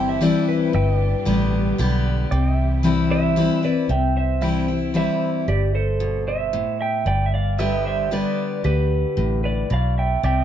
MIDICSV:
0, 0, Header, 1, 6, 480
1, 0, Start_track
1, 0, Key_signature, 0, "major"
1, 0, Tempo, 527704
1, 675, Time_signature, 3, 2, 24, 8
1, 9500, End_track
2, 0, Start_track
2, 0, Title_t, "Pedal steel guitar"
2, 0, Program_c, 0, 26
2, 0, Note_on_c, 0, 76, 75
2, 0, Note_on_c, 0, 79, 74
2, 651, Note_off_c, 0, 76, 0
2, 656, Note_off_c, 0, 79, 0
2, 678, Note_on_c, 0, 76, 74
2, 686, Note_on_c, 0, 79, 77
2, 906, Note_off_c, 0, 76, 0
2, 906, Note_on_c, 0, 74, 74
2, 2097, Note_off_c, 0, 74, 0
2, 2101, Note_off_c, 0, 79, 0
2, 2103, Note_on_c, 0, 74, 77
2, 2113, Note_on_c, 0, 79, 75
2, 2330, Note_off_c, 0, 74, 0
2, 2330, Note_on_c, 0, 76, 77
2, 3529, Note_off_c, 0, 76, 0
2, 3534, Note_off_c, 0, 79, 0
2, 4022, Note_on_c, 0, 76, 69
2, 4037, Note_on_c, 0, 79, 65
2, 6402, Note_off_c, 0, 76, 0
2, 6409, Note_off_c, 0, 79, 0
2, 6904, Note_on_c, 0, 76, 67
2, 6920, Note_on_c, 0, 79, 72
2, 7132, Note_off_c, 0, 76, 0
2, 7132, Note_on_c, 0, 74, 67
2, 9286, Note_off_c, 0, 74, 0
2, 9294, Note_off_c, 0, 79, 0
2, 9316, Note_on_c, 0, 74, 65
2, 9327, Note_on_c, 0, 79, 64
2, 9500, Note_off_c, 0, 74, 0
2, 9500, Note_off_c, 0, 79, 0
2, 9500, End_track
3, 0, Start_track
3, 0, Title_t, "Pedal steel guitar"
3, 0, Program_c, 1, 26
3, 83, Note_on_c, 1, 76, 88
3, 196, Note_off_c, 1, 76, 0
3, 207, Note_on_c, 1, 74, 105
3, 434, Note_off_c, 1, 74, 0
3, 442, Note_on_c, 1, 71, 95
3, 1837, Note_off_c, 1, 71, 0
3, 2832, Note_on_c, 1, 72, 82
3, 2834, Note_on_c, 1, 76, 108
3, 3277, Note_off_c, 1, 72, 0
3, 3317, Note_on_c, 1, 71, 76
3, 3318, Note_on_c, 1, 74, 100
3, 3324, Note_off_c, 1, 76, 0
3, 3536, Note_off_c, 1, 71, 0
3, 3548, Note_on_c, 1, 76, 71
3, 3555, Note_on_c, 1, 79, 95
3, 3559, Note_off_c, 1, 74, 0
3, 3771, Note_off_c, 1, 76, 0
3, 3790, Note_on_c, 1, 72, 67
3, 3796, Note_on_c, 1, 76, 83
3, 3798, Note_off_c, 1, 79, 0
3, 4472, Note_off_c, 1, 72, 0
3, 4508, Note_off_c, 1, 76, 0
3, 4514, Note_on_c, 1, 72, 71
3, 4519, Note_on_c, 1, 76, 91
3, 4957, Note_off_c, 1, 72, 0
3, 4988, Note_on_c, 1, 67, 64
3, 4993, Note_on_c, 1, 74, 84
3, 5007, Note_off_c, 1, 76, 0
3, 5211, Note_off_c, 1, 67, 0
3, 5226, Note_on_c, 1, 69, 64
3, 5228, Note_off_c, 1, 74, 0
3, 5232, Note_on_c, 1, 72, 88
3, 5673, Note_off_c, 1, 69, 0
3, 5700, Note_off_c, 1, 72, 0
3, 5710, Note_on_c, 1, 72, 70
3, 5716, Note_on_c, 1, 76, 101
3, 6157, Note_off_c, 1, 72, 0
3, 6180, Note_off_c, 1, 76, 0
3, 6191, Note_on_c, 1, 76, 72
3, 6201, Note_on_c, 1, 79, 91
3, 6413, Note_off_c, 1, 76, 0
3, 6424, Note_off_c, 1, 79, 0
3, 6429, Note_on_c, 1, 74, 71
3, 6434, Note_on_c, 1, 79, 97
3, 6597, Note_off_c, 1, 74, 0
3, 6599, Note_off_c, 1, 79, 0
3, 6604, Note_on_c, 1, 76, 63
3, 6667, Note_off_c, 1, 76, 0
3, 6675, Note_on_c, 1, 74, 70
3, 6686, Note_on_c, 1, 77, 88
3, 6895, Note_off_c, 1, 74, 0
3, 6909, Note_on_c, 1, 71, 64
3, 6921, Note_on_c, 1, 76, 86
3, 6925, Note_off_c, 1, 77, 0
3, 7133, Note_off_c, 1, 71, 0
3, 7145, Note_on_c, 1, 72, 66
3, 7149, Note_off_c, 1, 76, 0
3, 7160, Note_on_c, 1, 76, 90
3, 7371, Note_off_c, 1, 72, 0
3, 7378, Note_off_c, 1, 76, 0
3, 7391, Note_on_c, 1, 71, 67
3, 7400, Note_on_c, 1, 74, 96
3, 7838, Note_off_c, 1, 71, 0
3, 7842, Note_off_c, 1, 74, 0
3, 7865, Note_on_c, 1, 67, 69
3, 7875, Note_on_c, 1, 71, 85
3, 8552, Note_off_c, 1, 67, 0
3, 8576, Note_off_c, 1, 71, 0
3, 8586, Note_on_c, 1, 71, 58
3, 8599, Note_on_c, 1, 74, 85
3, 8812, Note_off_c, 1, 71, 0
3, 8819, Note_off_c, 1, 74, 0
3, 8844, Note_on_c, 1, 74, 69
3, 8856, Note_on_c, 1, 77, 91
3, 9062, Note_off_c, 1, 74, 0
3, 9073, Note_off_c, 1, 77, 0
3, 9077, Note_on_c, 1, 76, 60
3, 9086, Note_on_c, 1, 79, 87
3, 9298, Note_off_c, 1, 76, 0
3, 9303, Note_off_c, 1, 79, 0
3, 9322, Note_on_c, 1, 76, 72
3, 9331, Note_on_c, 1, 79, 94
3, 9500, Note_off_c, 1, 76, 0
3, 9500, Note_off_c, 1, 79, 0
3, 9500, End_track
4, 0, Start_track
4, 0, Title_t, "Steel-string acoustic guitar"
4, 0, Program_c, 2, 25
4, 0, Note_on_c, 2, 43, 92
4, 0, Note_on_c, 2, 60, 50
4, 0, Note_on_c, 2, 64, 64
4, 146, Note_off_c, 2, 43, 0
4, 183, Note_off_c, 2, 64, 0
4, 186, Note_off_c, 2, 60, 0
4, 188, Note_on_c, 2, 52, 97
4, 194, Note_on_c, 2, 55, 100
4, 197, Note_on_c, 2, 60, 109
4, 202, Note_on_c, 2, 64, 103
4, 646, Note_off_c, 2, 52, 0
4, 649, Note_off_c, 2, 55, 0
4, 651, Note_off_c, 2, 60, 0
4, 653, Note_off_c, 2, 64, 0
4, 666, Note_on_c, 2, 43, 85
4, 1140, Note_on_c, 2, 50, 84
4, 1146, Note_on_c, 2, 55, 100
4, 1150, Note_on_c, 2, 59, 96
4, 1155, Note_on_c, 2, 67, 95
4, 1579, Note_off_c, 2, 43, 0
4, 1601, Note_off_c, 2, 50, 0
4, 1604, Note_off_c, 2, 55, 0
4, 1606, Note_off_c, 2, 59, 0
4, 1608, Note_off_c, 2, 67, 0
4, 1622, Note_on_c, 2, 50, 91
4, 1629, Note_on_c, 2, 55, 95
4, 1631, Note_on_c, 2, 59, 102
4, 1637, Note_on_c, 2, 67, 101
4, 2081, Note_off_c, 2, 50, 0
4, 2085, Note_off_c, 2, 55, 0
4, 2086, Note_off_c, 2, 59, 0
4, 2089, Note_off_c, 2, 67, 0
4, 2108, Note_on_c, 2, 48, 81
4, 2575, Note_on_c, 2, 52, 89
4, 2582, Note_on_c, 2, 55, 94
4, 2587, Note_on_c, 2, 60, 94
4, 2592, Note_on_c, 2, 64, 99
4, 3019, Note_off_c, 2, 48, 0
4, 3037, Note_off_c, 2, 52, 0
4, 3040, Note_off_c, 2, 55, 0
4, 3043, Note_off_c, 2, 60, 0
4, 3045, Note_off_c, 2, 64, 0
4, 3057, Note_on_c, 2, 52, 89
4, 3064, Note_on_c, 2, 55, 93
4, 3068, Note_on_c, 2, 60, 104
4, 3074, Note_on_c, 2, 64, 101
4, 3288, Note_off_c, 2, 64, 0
4, 3293, Note_off_c, 2, 52, 0
4, 3296, Note_off_c, 2, 55, 0
4, 3298, Note_off_c, 2, 60, 0
4, 3299, Note_on_c, 2, 64, 70
4, 3310, Note_on_c, 2, 60, 59
4, 3533, Note_off_c, 2, 64, 0
4, 3539, Note_off_c, 2, 60, 0
4, 3540, Note_on_c, 2, 48, 79
4, 4015, Note_on_c, 2, 52, 75
4, 4020, Note_on_c, 2, 55, 76
4, 4026, Note_on_c, 2, 60, 77
4, 4030, Note_on_c, 2, 64, 86
4, 4247, Note_off_c, 2, 64, 0
4, 4251, Note_off_c, 2, 52, 0
4, 4254, Note_off_c, 2, 55, 0
4, 4257, Note_off_c, 2, 60, 0
4, 4258, Note_on_c, 2, 64, 62
4, 4272, Note_on_c, 2, 60, 46
4, 4455, Note_off_c, 2, 48, 0
4, 4491, Note_on_c, 2, 52, 77
4, 4492, Note_off_c, 2, 60, 0
4, 4493, Note_off_c, 2, 64, 0
4, 4499, Note_on_c, 2, 55, 84
4, 4503, Note_on_c, 2, 60, 85
4, 4508, Note_on_c, 2, 64, 89
4, 4955, Note_off_c, 2, 52, 0
4, 4959, Note_off_c, 2, 55, 0
4, 4961, Note_off_c, 2, 60, 0
4, 4964, Note_off_c, 2, 64, 0
4, 4983, Note_on_c, 2, 43, 73
4, 5458, Note_on_c, 2, 47, 79
4, 5898, Note_off_c, 2, 43, 0
4, 5919, Note_off_c, 2, 47, 0
4, 5940, Note_on_c, 2, 45, 85
4, 6400, Note_off_c, 2, 45, 0
4, 6421, Note_on_c, 2, 43, 80
4, 6899, Note_on_c, 2, 50, 78
4, 6903, Note_on_c, 2, 55, 78
4, 6908, Note_on_c, 2, 59, 77
4, 6911, Note_on_c, 2, 67, 97
4, 7338, Note_off_c, 2, 43, 0
4, 7361, Note_off_c, 2, 50, 0
4, 7363, Note_off_c, 2, 55, 0
4, 7365, Note_off_c, 2, 59, 0
4, 7367, Note_off_c, 2, 67, 0
4, 7378, Note_on_c, 2, 50, 77
4, 7383, Note_on_c, 2, 55, 82
4, 7390, Note_on_c, 2, 59, 81
4, 7392, Note_on_c, 2, 67, 95
4, 7841, Note_off_c, 2, 50, 0
4, 7843, Note_off_c, 2, 55, 0
4, 7847, Note_off_c, 2, 59, 0
4, 7847, Note_off_c, 2, 67, 0
4, 7859, Note_on_c, 2, 50, 79
4, 8339, Note_on_c, 2, 45, 79
4, 8778, Note_off_c, 2, 50, 0
4, 8802, Note_off_c, 2, 45, 0
4, 8823, Note_on_c, 2, 47, 82
4, 9284, Note_off_c, 2, 47, 0
4, 9308, Note_on_c, 2, 48, 78
4, 9500, Note_off_c, 2, 48, 0
4, 9500, End_track
5, 0, Start_track
5, 0, Title_t, "String section"
5, 0, Program_c, 3, 48
5, 0, Note_on_c, 3, 48, 72
5, 0, Note_on_c, 3, 52, 67
5, 0, Note_on_c, 3, 55, 61
5, 0, Note_on_c, 3, 64, 71
5, 0, Note_on_c, 3, 67, 76
5, 632, Note_off_c, 3, 55, 0
5, 647, Note_off_c, 3, 52, 0
5, 649, Note_off_c, 3, 48, 0
5, 649, Note_off_c, 3, 64, 0
5, 675, Note_on_c, 3, 50, 67
5, 681, Note_on_c, 3, 47, 70
5, 681, Note_on_c, 3, 55, 68
5, 681, Note_on_c, 3, 62, 68
5, 2096, Note_off_c, 3, 50, 0
5, 2099, Note_off_c, 3, 47, 0
5, 2099, Note_off_c, 3, 62, 0
5, 2114, Note_on_c, 3, 48, 74
5, 2115, Note_on_c, 3, 64, 65
5, 2123, Note_on_c, 3, 52, 70
5, 3516, Note_off_c, 3, 67, 0
5, 3522, Note_off_c, 3, 55, 0
5, 3535, Note_off_c, 3, 48, 0
5, 3536, Note_off_c, 3, 64, 0
5, 3539, Note_off_c, 3, 52, 0
5, 9500, End_track
6, 0, Start_track
6, 0, Title_t, "Fingered electric bass"
6, 0, Program_c, 4, 33
6, 0, Note_on_c, 4, 31, 83
6, 298, Note_off_c, 4, 31, 0
6, 675, Note_on_c, 4, 31, 95
6, 1027, Note_off_c, 4, 31, 0
6, 1154, Note_on_c, 4, 33, 92
6, 1560, Note_off_c, 4, 33, 0
6, 1631, Note_on_c, 4, 35, 81
6, 2038, Note_off_c, 4, 35, 0
6, 2107, Note_on_c, 4, 36, 97
6, 3168, Note_off_c, 4, 36, 0
6, 3542, Note_on_c, 4, 36, 89
6, 4606, Note_off_c, 4, 36, 0
6, 4982, Note_on_c, 4, 31, 81
6, 6047, Note_off_c, 4, 31, 0
6, 6418, Note_on_c, 4, 31, 79
6, 7486, Note_off_c, 4, 31, 0
6, 7866, Note_on_c, 4, 38, 81
6, 8222, Note_off_c, 4, 38, 0
6, 8345, Note_on_c, 4, 33, 74
6, 8756, Note_off_c, 4, 33, 0
6, 8831, Note_on_c, 4, 35, 75
6, 9240, Note_off_c, 4, 35, 0
6, 9309, Note_on_c, 4, 36, 86
6, 9500, Note_off_c, 4, 36, 0
6, 9500, End_track
0, 0, End_of_file